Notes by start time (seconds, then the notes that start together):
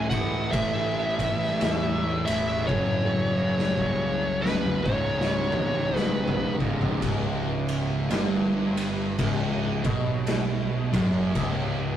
Already playing: C#2 A2 E3 A3
0.10 A2 E3 A3 F#5, kick, ride
0.51 A1 A2 E3 A3 E5, kick, ride
1.18 A2 E3 A3, kick, ride
1.42 snare
1.60 E2 A2 E3 A3, snare, ride
2.25 E1 A2 E3 A3 E5, ride
2.67 F#1 F#2 C#3 F#3 C#5, kick, high tom
3.02 high tom
3.34 F#2 C#3 F#3
3.59 snare
3.76 C2 F#2 C#3 F#3, kick
4.42 F#2 C#3 F#3 B4, snare
4.65 mid tom
4.84 C#1 C#2 G#2 C#3 C#5, kick
5.21 snare
5.52 A1 C#2 G#2 C#3, mid tom
5.93 B1 C#2 G#2 C#3, snare
5.98 B4
6.28 floor tom
6.59 G#1 C#2 G#2 C#3, kick
6.81 floor tom
7.01 C#1 C#2, kick, ride
7.68 ride
8.10 G1 G2, snare, ride
8.77 ride
9.18 C#1 C#2, kick, ride
9.84 B1 B2, kick, ride
10.27 snare, ride
10.92 F#1 F#2, kick, ride
11.34 C#1 C#2, kick, ride